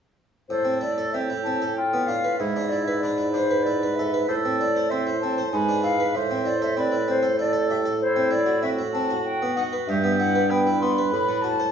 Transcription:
0.49 bassoon A2, harpsichord A2, oboe A4, flute C5
0.65 harpsichord C4
0.81 harpsichord E4, flute D5
0.98 harpsichord A4
1.13 harpsichord C4, oboe G4, flute E5
1.30 harpsichord E4
1.44 harpsichord C4, flute A5
1.62 harpsichord A4
1.76 oboe F4, flute G5
1.93 harpsichord B3
2.06 harpsichord D4, flute F5
2.24 harpsichord B4
2.39 bassoon G#2, harpsichord G#2, oboe E4, flute E5
2.56 harpsichord D4
2.69 harpsichord E4, flute D5
2.85 harpsichord B4, flute E5
3.00 harpsichord D4, oboe B4, flute D5
3.18 harpsichord E4
3.32 harpsichord D4, flute C5
3.51 harpsichord B4
3.63 harpsichord E4, flute D5
3.83 harpsichord B4
3.95 harpsichord A4, flute E5
4.14 harpsichord B4
4.28 bassoon A2, harpsichord A2, oboe A4, flute C5
4.45 harpsichord C4
4.60 harpsichord E4, flute D5
4.76 harpsichord C5
4.90 harpsichord C4, oboe C5, flute E5
5.07 harpsichord E4
5.21 harpsichord C4, flute A5
5.38 harpsichord C5
5.52 bassoon G#2, harpsichord G#2, oboe B4, flute G#5
5.69 harpsichord D4
5.83 harpsichord E4, flute F5
6.00 harpsichord B4
6.14 harpsichord A2, bassoon A2, oboe C5, flute E5
6.31 harpsichord C4
6.45 harpsichord E4, flute D5
6.62 harpsichord A4, flute E5
6.77 harpsichord C4, oboe B4, flute D5
6.92 harpsichord E4
7.08 harpsichord C4, flute C5
7.23 harpsichord A4
7.39 harpsichord E4, oboe A4, flute D5
7.53 harpsichord A4
7.70 harpsichord G4, flute E5
7.86 harpsichord A4
8.01 oboe E4, flute C5
8.16 harpsichord C4
8.31 harpsichord E4, flute D5
8.46 harpsichord F#4
8.63 harpsichord C4, oboe F#4, flute E5
8.78 harpsichord E4
8.93 harpsichord C4, flute A5
9.10 harpsichord F#4
9.25 flute G5
9.42 harpsichord B3
9.56 harpsichord D#4, flute F#5
9.73 harpsichord B4
9.87 bassoon G2, harpsichord G2, oboe G4, flute E5
10.04 harpsichord B3
10.19 harpsichord E4, flute F#5
10.35 harpsichord B4
10.50 harpsichord B3, oboe B4, flute G5
10.67 harpsichord E4
10.81 harpsichord B3, flute C6
10.98 harpsichord B4
11.12 bassoon A2, harpsichord A2, flute B5
11.29 harpsichord A3
11.42 harpsichord F#4, flute A5
11.60 harpsichord C5

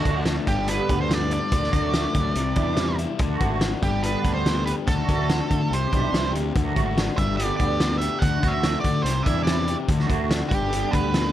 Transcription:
Already playing: clean electric guitar D3 A3 D4 F#4, overdriven electric guitar D3
0.05 fingered electric bass D2, overdriven electric guitar D4, kick, closed hi-hat
0.25 overdriven electric guitar A3, snare, closed hi-hat
0.46 fingered electric bass G1, overdriven electric guitar G2, clean electric guitar D3 G3, lead electric guitar G4, kick, closed hi-hat
0.68 overdriven electric guitar D4, lead electric guitar B4, closed hi-hat
0.89 fingered electric bass D2, overdriven electric guitar B3, kick, closed hi-hat
1.01 lead electric guitar C5
1.10 overdriven electric guitar G3, lead electric guitar D5, snare, closed hi-hat
1.31 overdriven electric guitar D4, lead electric guitar D5, closed hi-hat
1.52 fingered electric bass D2, overdriven electric guitar D3, clean electric guitar D4 F#4, kick, closed hi-hat
1.63 snare
1.73 fingered electric bass D2, overdriven electric guitar D4, kick, closed hi-hat
1.93 overdriven electric guitar A3, snare, closed hi-hat
2.14 fingered electric bass D2, overdriven electric guitar F#3, kick, closed hi-hat
2.35 fingered electric bass C2, overdriven electric guitar C3, clean electric guitar G3 G4, closed hi-hat
2.56 fingered electric bass E2, overdriven electric guitar D4, kick, closed hi-hat
2.77 overdriven electric guitar G3, snare, closed hi-hat
2.99 overdriven electric guitar E4, closed hi-hat
3.17 fingered electric bass D2, clean electric guitar D3 A3 D4 F#4, overdriven electric guitar D3, kick, closed hi-hat
3.40 fingered electric bass G#1, overdriven electric guitar F#4, kick, closed hi-hat
3.61 overdriven electric guitar D4, snare, closed hi-hat
3.82 fingered electric bass G1, overdriven electric guitar G3, clean electric guitar G3 B3 D4 G4, lead electric guitar G4, kick, closed hi-hat
4.03 overdriven electric guitar G4, lead electric guitar B4, closed hi-hat
4.24 fingered electric bass D2, overdriven electric guitar D4, kick, closed hi-hat
4.34 lead electric guitar C5
4.45 overdriven electric guitar B3, snare, closed hi-hat
4.66 overdriven electric guitar G4, lead electric guitar B4, closed hi-hat
4.85 fingered electric bass D2, clean electric guitar D3 F#3 A3 D4 F#4, overdriven electric guitar D3, lead electric guitar A4, kick, closed hi-hat
5.08 fingered electric bass D2, overdriven electric guitar F#4, kick, closed hi-hat
5.29 overdriven electric guitar D4, snare, closed hi-hat
5.50 fingered electric bass D3, overdriven electric guitar A3, kick, closed hi-hat
5.71 fingered electric bass C2, overdriven electric guitar C3, clean electric guitar E3 D4 G4, lead electric guitar C5, closed hi-hat
5.92 fingered electric bass B1, overdriven electric guitar D4, kick, closed hi-hat
6.12 fingered electric bass C2, overdriven electric guitar C4, snare, closed hi-hat
6.32 fingered electric bass D2, overdriven electric guitar G4, closed hi-hat
6.54 fingered electric bass D2, clean electric guitar D3 F#3 A3 D4 F#4, overdriven electric guitar D3, kick, closed hi-hat
6.76 fingered electric bass G#1, overdriven electric guitar F#4, kick, closed hi-hat
6.98 overdriven electric guitar D4, snare, closed hi-hat
7.17 fingered electric bass G1, overdriven electric guitar G3, clean electric guitar D4 G4, lead electric guitar E5, kick, closed hi-hat
7.37 overdriven electric guitar G4, lead electric guitar D5, closed hi-hat
7.56 fingered electric bass D2, lead electric guitar D5, kick, closed hi-hat
7.61 overdriven electric guitar D4
7.80 overdriven electric guitar B3, snare, closed hi-hat
7.98 overdriven electric guitar G4, lead electric guitar E5, closed hi-hat
8.19 fingered electric bass D2, clean electric guitar D3 A3, overdriven electric guitar D3, lead electric guitar F#5, kick, closed hi-hat
8.24 clean electric guitar D4 F#4
8.43 fingered electric bass D2, overdriven electric guitar F#4, kick, closed hi-hat
8.48 lead electric guitar E5
8.63 overdriven electric guitar D4, snare, closed hi-hat
8.80 fingered electric bass D3, lead electric guitar D5
8.84 overdriven electric guitar A3, kick, closed hi-hat
9.02 fingered electric bass C2, overdriven electric guitar C3, lead electric guitar C5, closed hi-hat
9.06 clean electric guitar E4
9.23 fingered electric bass E2, overdriven electric guitar D4, lead electric guitar E5, kick, closed hi-hat
9.43 lead electric guitar D5, snare, closed hi-hat
9.48 overdriven electric guitar C4
9.68 overdriven electric guitar G4, closed hi-hat
9.87 fingered electric bass D2, clean electric guitar D3 A3 D4 F#4, overdriven electric guitar D3, kick, closed hi-hat
10.00 snare
10.09 fingered electric bass D2, overdriven electric guitar F#4, kick, closed hi-hat
10.30 overdriven electric guitar D4, snare, closed hi-hat
10.49 fingered electric bass G1, overdriven electric guitar G3, lead electric guitar G4, clean electric guitar G4, kick, closed hi-hat
10.71 overdriven electric guitar G4, closed hi-hat
10.91 fingered electric bass D2, overdriven electric guitar D4, lead electric guitar B4, kick, closed hi-hat
11.12 overdriven electric guitar B3, snare, closed hi-hat

